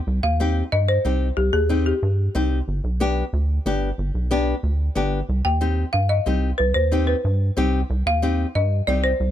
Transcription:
0.07 C2
0.23 D#2 F5
0.40 C4 D#4 G4
0.72 G2 D#5
0.89 C5
1.05 C2 C4 D#4 G4
1.37 C2 G4
1.53 D#2 G#4
1.69 C4 D#4 G4
1.86 G4
2.03 G2
2.35 C2 C4 D#4 G4
2.68 G1
2.84 B1
3.00 B3 D4 G4
3.33 D2
3.66 G1 B3 D4 G4
3.98 G1
4.15 B1
4.31 B3 D4 G4
4.63 D2
4.95 G1 B3 D4 G4
5.29 C2
5.45 D#2 G5
5.61 C4 D#4 G4
5.93 G2 F5
6.09 D#5
6.26 C2 C4 D#4 G4
6.58 C2 B4
6.74 D#2 C5
6.92 C4 D#4 G4
7.07 B4
7.25 G2
7.57 C2 C4 D#4 G4
7.90 C2
8.06 D#2 F5
8.22 C4 D#4 G4
8.55 G2 D#5
8.87 C2 C4 D#4 G4 D5
9.04 C5
9.20 C2

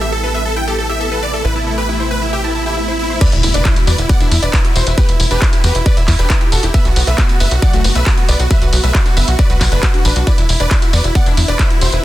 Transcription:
Already playing: A1 C3 E3 A3 B3 E4
0.01 G4 E5
0.12 A4
0.23 A4 B4
0.34 B4 E5
0.45 A4
0.56 E4 G5
0.67 G4 A4
0.78 A4
0.89 G4 E5
1.00 A4 E5
1.12 A4 B4
1.23 B4 D5
1.33 A4 E5
1.45 A1 E4 B4
1.56 E4 A5
1.67 E4 A4
1.78 G4 B4
1.89 E4
2.00 E4 C5
2.11 B4
2.22 E4
2.33 G4 E5
2.44 E4 A5
2.55 E4 A5
2.66 E4 G4
2.77 E4 E5
2.88 E4 C5
2.99 E4
3.10 E4 C5
3.21 E4 B4 D5, kick, closed hi-hat, crash, tambourine, impact
3.32 E1 E4, closed hi-hat, tambourine
3.43 E1 E4, open hi-hat, tambourine
3.54 E1 D4 B4 D5, closed hi-hat, tambourine
3.65 E4, kick, clap, closed hi-hat, tambourine
3.76 E4 F#4, closed hi-hat, tambourine
3.87 E2 F#4 B4 D5, open hi-hat, tambourine
3.98 E1 E4, closed hi-hat, tambourine
4.09 B3 D5 F#5, kick, closed hi-hat, tambourine
4.20 E1 D4 E4, closed hi-hat, tambourine
4.31 E2 E4, open hi-hat, tambourine
4.42 E1 D4 B4 D5, closed hi-hat, tambourine
4.53 E4 B4, kick, clap, closed hi-hat, tambourine
4.64 E4 F#4, closed hi-hat
4.76 E1 E4 F#4 C5, open hi-hat, tambourine
4.87 E1 E4 B4, closed hi-hat, tambourine
4.98 B3 G4 B4, kick, closed hi-hat, tambourine
5.09 E1 E4 E5, closed hi-hat, tambourine
5.20 E1 E4, open hi-hat, tambourine
5.31 E1 D4 G4 B4, closed hi-hat, tambourine
5.42 E4, kick, clap, closed hi-hat, tambourine
5.53 E4 G4, closed hi-hat, tambourine
5.64 E2 F#4 G4 B4, open hi-hat, tambourine
5.75 E1 E4, closed hi-hat, tambourine
5.86 B4 D5, kick, closed hi-hat, tambourine
5.97 E1 E4 E5, closed hi-hat, tambourine
6.08 E2 E4 E5, kick, clap, open hi-hat, tambourine
6.19 E1 D4 G4 B4, closed hi-hat, tambourine
6.30 E4 B4, kick, clap, closed hi-hat, tambourine
6.41 E4 G4, closed hi-hat
6.52 E1 F#4 A4, open hi-hat, tambourine
6.63 E1 E4 G4, closed hi-hat, tambourine
6.74 B3 B4 E5, kick, closed hi-hat, tambourine
6.85 B1 B3 F#4, closed hi-hat, tambourine
6.96 B1 B3 F#4, open hi-hat, tambourine
7.07 B1 A3 B4 E5, closed hi-hat, tambourine
7.18 B3 F#4, kick, clap, closed hi-hat, tambourine
7.29 B3 F#4, closed hi-hat, tambourine
7.40 F#1 B3 B4 E5, open hi-hat, tambourine
7.51 B1 F#4, closed hi-hat, tambourine
7.62 F#3 D5 F#5, kick, closed hi-hat, tambourine
7.73 B1 A3 F#4, closed hi-hat, tambourine
7.84 F#1 B3 F#4, open hi-hat, tambourine
7.95 B1 A3 B4 E5, closed hi-hat, tambourine
8.06 F#4, kick, clap, closed hi-hat, tambourine
8.17 B3 F#4, closed hi-hat
8.29 B1 B3 B4 D5, open hi-hat, tambourine
8.40 B1 F#4, closed hi-hat, tambourine
8.51 F#3 B4 E5, kick, closed hi-hat, tambourine
8.62 B1 F#4 B4, closed hi-hat, tambourine
8.73 B1 B3 F#4, open hi-hat, tambourine
8.83 B1 A3 B4 E5, closed hi-hat, tambourine
8.94 F#4, kick, clap, closed hi-hat, tambourine
9.06 D4 F#4, closed hi-hat, tambourine
9.17 F#1 B3 B4 E5, open hi-hat, tambourine
9.28 B1 F#4, closed hi-hat, tambourine
9.39 F#4 B4 D5, kick, closed hi-hat, tambourine
9.50 B1 F#4 B4, closed hi-hat, tambourine
9.61 B1 F#4 B4, kick, clap, open hi-hat, tambourine
9.72 F#1 A3 D4 B4, closed hi-hat, tambourine
9.83 F#4, kick, clap, closed hi-hat, tambourine
9.94 D4 F#4, closed hi-hat
10.05 A1 D4 B4, open hi-hat, tambourine
10.16 B1 D4 F#4, closed hi-hat, tambourine
10.27 D3 E3 G3 B3 E4 B4 D5, kick, closed hi-hat, tambourine
10.38 E1 E4, closed hi-hat, tambourine
10.49 E1 E4, open hi-hat, tambourine
10.60 E1 D4 B4 D5, closed hi-hat, tambourine
10.71 E4, kick, clap, closed hi-hat, tambourine
10.82 E4 F#4, closed hi-hat, tambourine
10.93 E2 F#4 B4 D5, open hi-hat, tambourine
11.04 E1 E4, closed hi-hat, tambourine
11.15 B3 D5 F#5, kick, closed hi-hat, tambourine
11.26 E1 D4 E4, closed hi-hat, tambourine
11.37 E2 E4, open hi-hat, tambourine
11.48 E1 D4 B4 D5, closed hi-hat, tambourine
11.59 E4 B4, kick, clap, closed hi-hat, tambourine
11.70 E4 F#4, closed hi-hat
11.81 E1 E4 F#4 C5, open hi-hat, tambourine
11.92 E1 E4 B4, closed hi-hat, tambourine

